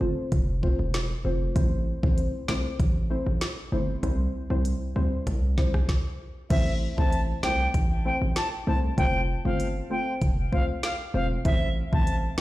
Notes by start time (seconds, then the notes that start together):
0.00 G1 A3 C4 F4 C5
0.32 F1, kick, closed hi-hat
0.62 A3 C4 F4 C5, kick
0.79 E1
0.94 snare, closed hi-hat
1.24 F1 A3 C4 F4 C5
1.55 A1 A3 C4 E4 C5, kick, closed hi-hat
2.03 A1 A3 C4 E4 C5, kick
2.18 closed hi-hat
2.48 C2 A3 C4 E4 C5, kick, snare
2.80 A1, kick, closed hi-hat
3.10 A3 C4 E4 C5
3.26 A1
3.41 snare, closed hi-hat
3.72 G1 A3 C4 E4 C5
4.02 C2 G3 C4 E4 C5, kick, closed hi-hat
4.50 C2 G3 C4 E4 C5
4.65 closed hi-hat
4.95 D2 G3 C4 E4 C5
5.27 C2, kick, closed hi-hat
5.57 G3 C4 E4 C5, kick, snare
5.74 B1, cross-stick
5.89 kick, snare
6.50 A1 A3 C4 E4 C5 E5, kick, closed hi-hat, crash
6.97 A1 A3 C4 E4 C5 A5, kick
7.12 closed hi-hat
7.43 C2 A3 C4 E4 C5 G5, kick, snare
7.74 A1, kick, closed hi-hat
8.05 A3 C4 E4 C5 G5
8.21 A1
8.36 A5, snare, closed hi-hat
8.67 C2 A3 C4 E4 C5 A5
8.98 F1 A3 C4 F4 C5 G5, kick, closed hi-hat
9.45 G1 A3 C4 F4 C5 F5
9.60 closed hi-hat
9.90 A3 C4 F4 C5 G5
10.22 F1, kick, closed hi-hat
10.52 A3 C4 F4 C5 F5, kick
10.83 F5, snare, closed hi-hat
11.14 E1 A3 C4 F4 C5 F5
11.45 A1 A3 C4 E4 C5 E5, kick, closed hi-hat
11.92 A1 A3 C4 E4 C5 A5, kick
12.07 closed hi-hat
12.38 A3 C4, snare